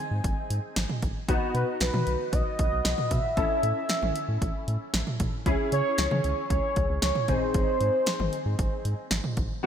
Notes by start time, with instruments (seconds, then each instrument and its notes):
Already playing: grand piano C4 D#4 G#4, soft synth lead G#5
0.11 analog synth bass G#2
0.24 analog synth bass G#1, kick, closed hi-hat
0.50 analog synth bass G#2, closed hi-hat
0.76 analog synth bass G#1, snare, closed hi-hat
0.90 mid tom
1.02 analog synth bass G#1, kick, closed hi-hat
1.28 analog synth bass B1, grand piano B3 D#4 F#4, kick, closed hi-hat
1.54 analog synth bass B2, soft synth lead B4, closed hi-hat
1.80 analog synth bass B1, soft synth lead B4, snare, closed hi-hat
1.94 analog synth bass B2, mid tom
2.07 analog synth bass B1, closed hi-hat
2.33 analog synth bass B1, soft synth lead D#5, kick, closed hi-hat
2.59 analog synth bass B1, kick, closed hi-hat
2.72 analog synth bass B1
2.85 analog synth bass B1, snare, closed hi-hat
2.98 mid tom
3.11 analog synth bass B2, soft synth lead E5, kick, closed hi-hat, mid tom
3.37 analog synth bass A1, grand piano C#4 E4 A4, kick, closed hi-hat
3.63 analog synth bass A2, closed hi-hat
3.89 snare, closed hi-hat
4.02 analog synth bass A1, mid tom
4.16 closed hi-hat
4.28 analog synth bass A2
4.42 analog synth bass A1, kick, closed hi-hat
4.68 analog synth bass A2, closed hi-hat
4.94 analog synth bass A1, snare, closed hi-hat
5.07 mid tom
5.20 analog synth bass A1, kick, closed hi-hat, mid tom
5.46 analog synth bass C#2, grand piano C#4 E4 G#4, kick, closed hi-hat
5.72 analog synth bass C#3, soft synth lead C#5, closed hi-hat
5.98 analog synth bass C#2, snare, closed hi-hat
6.11 analog synth bass C#3, mid tom
6.24 analog synth bass C#2, closed hi-hat
6.50 analog synth bass C#2, soft synth lead C#5, kick, closed hi-hat
6.76 analog synth bass C#2, kick, closed hi-hat
6.89 analog synth bass C#2
7.02 analog synth bass C#2, soft synth lead C#5, snare, closed hi-hat
7.15 mid tom
7.28 analog synth bass G#1, grand piano C4 D#4 G#4, soft synth lead C5, kick, closed hi-hat, mid tom
7.54 analog synth bass G#1, kick, closed hi-hat
7.81 analog synth bass G#2, closed hi-hat
8.06 snare, closed hi-hat
8.20 analog synth bass G#1, mid tom
8.33 closed hi-hat
8.46 analog synth bass G#2
8.59 analog synth bass G#1, kick, closed hi-hat
8.85 analog synth bass G#2, closed hi-hat
9.11 analog synth bass G#1, snare, closed hi-hat
9.24 mid tom
9.37 analog synth bass G#1, kick, closed hi-hat
9.63 grand piano B3 F#4